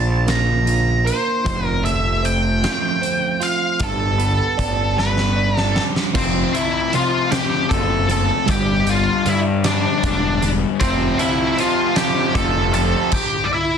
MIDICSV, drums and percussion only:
0, 0, Header, 1, 2, 480
1, 0, Start_track
1, 0, Tempo, 780234
1, 904, Time_signature, 6, 3, 24, 8
1, 4260, Tempo, 775194
1, 8504, End_track
2, 0, Start_track
2, 0, Title_t, "Drums"
2, 172, Note_on_c, 9, 42, 84
2, 174, Note_on_c, 9, 38, 114
2, 233, Note_off_c, 9, 42, 0
2, 236, Note_off_c, 9, 38, 0
2, 414, Note_on_c, 9, 42, 65
2, 475, Note_off_c, 9, 42, 0
2, 661, Note_on_c, 9, 42, 64
2, 722, Note_off_c, 9, 42, 0
2, 899, Note_on_c, 9, 36, 108
2, 899, Note_on_c, 9, 42, 77
2, 961, Note_off_c, 9, 36, 0
2, 961, Note_off_c, 9, 42, 0
2, 1142, Note_on_c, 9, 42, 51
2, 1204, Note_off_c, 9, 42, 0
2, 1383, Note_on_c, 9, 42, 55
2, 1445, Note_off_c, 9, 42, 0
2, 1623, Note_on_c, 9, 42, 71
2, 1625, Note_on_c, 9, 38, 103
2, 1684, Note_off_c, 9, 42, 0
2, 1687, Note_off_c, 9, 38, 0
2, 1865, Note_on_c, 9, 42, 62
2, 1926, Note_off_c, 9, 42, 0
2, 2101, Note_on_c, 9, 42, 55
2, 2163, Note_off_c, 9, 42, 0
2, 2335, Note_on_c, 9, 42, 82
2, 2340, Note_on_c, 9, 36, 111
2, 2396, Note_off_c, 9, 42, 0
2, 2402, Note_off_c, 9, 36, 0
2, 2581, Note_on_c, 9, 42, 55
2, 2643, Note_off_c, 9, 42, 0
2, 2823, Note_on_c, 9, 36, 79
2, 2827, Note_on_c, 9, 42, 66
2, 2885, Note_off_c, 9, 36, 0
2, 2888, Note_off_c, 9, 42, 0
2, 3067, Note_on_c, 9, 38, 57
2, 3128, Note_off_c, 9, 38, 0
2, 3183, Note_on_c, 9, 38, 55
2, 3244, Note_off_c, 9, 38, 0
2, 3429, Note_on_c, 9, 38, 64
2, 3491, Note_off_c, 9, 38, 0
2, 3544, Note_on_c, 9, 38, 90
2, 3605, Note_off_c, 9, 38, 0
2, 3669, Note_on_c, 9, 38, 79
2, 3730, Note_off_c, 9, 38, 0
2, 3782, Note_on_c, 9, 49, 109
2, 3783, Note_on_c, 9, 36, 103
2, 3844, Note_off_c, 9, 49, 0
2, 3845, Note_off_c, 9, 36, 0
2, 4028, Note_on_c, 9, 42, 66
2, 4089, Note_off_c, 9, 42, 0
2, 4263, Note_on_c, 9, 42, 72
2, 4325, Note_off_c, 9, 42, 0
2, 4503, Note_on_c, 9, 42, 86
2, 4506, Note_on_c, 9, 38, 100
2, 4565, Note_off_c, 9, 42, 0
2, 4568, Note_off_c, 9, 38, 0
2, 4746, Note_on_c, 9, 36, 86
2, 4748, Note_on_c, 9, 42, 68
2, 4808, Note_off_c, 9, 36, 0
2, 4809, Note_off_c, 9, 42, 0
2, 4985, Note_on_c, 9, 42, 68
2, 5047, Note_off_c, 9, 42, 0
2, 5222, Note_on_c, 9, 42, 101
2, 5227, Note_on_c, 9, 36, 116
2, 5283, Note_off_c, 9, 42, 0
2, 5288, Note_off_c, 9, 36, 0
2, 5463, Note_on_c, 9, 42, 66
2, 5525, Note_off_c, 9, 42, 0
2, 5705, Note_on_c, 9, 42, 61
2, 5767, Note_off_c, 9, 42, 0
2, 5942, Note_on_c, 9, 42, 86
2, 5944, Note_on_c, 9, 38, 106
2, 6004, Note_off_c, 9, 42, 0
2, 6006, Note_off_c, 9, 38, 0
2, 6186, Note_on_c, 9, 42, 66
2, 6188, Note_on_c, 9, 36, 81
2, 6247, Note_off_c, 9, 42, 0
2, 6250, Note_off_c, 9, 36, 0
2, 6427, Note_on_c, 9, 42, 68
2, 6489, Note_off_c, 9, 42, 0
2, 6663, Note_on_c, 9, 42, 95
2, 6665, Note_on_c, 9, 36, 105
2, 6725, Note_off_c, 9, 42, 0
2, 6727, Note_off_c, 9, 36, 0
2, 6903, Note_on_c, 9, 42, 70
2, 6965, Note_off_c, 9, 42, 0
2, 7146, Note_on_c, 9, 42, 74
2, 7207, Note_off_c, 9, 42, 0
2, 7377, Note_on_c, 9, 42, 99
2, 7380, Note_on_c, 9, 38, 105
2, 7439, Note_off_c, 9, 42, 0
2, 7442, Note_off_c, 9, 38, 0
2, 7621, Note_on_c, 9, 36, 81
2, 7622, Note_on_c, 9, 42, 70
2, 7683, Note_off_c, 9, 36, 0
2, 7684, Note_off_c, 9, 42, 0
2, 7859, Note_on_c, 9, 42, 71
2, 7921, Note_off_c, 9, 42, 0
2, 8094, Note_on_c, 9, 49, 101
2, 8099, Note_on_c, 9, 36, 106
2, 8156, Note_off_c, 9, 49, 0
2, 8161, Note_off_c, 9, 36, 0
2, 8504, End_track
0, 0, End_of_file